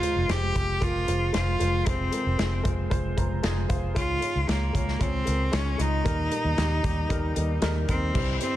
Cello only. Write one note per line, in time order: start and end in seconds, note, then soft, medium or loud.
0.00 0.32 F4 medium
0.31 0.85 G4 medium
0.83 1.35 F4 medium
1.36 1.90 F4 medium
1.88 2.66 C4 medium
3.97 4.51 F4 medium
4.50 5.04 A#3 medium
5.02 5.57 C4 medium
5.55 5.83 C#4 medium
5.81 7.64 D#4 medium
7.90 8.38 C4 medium
8.42 8.56 C4 medium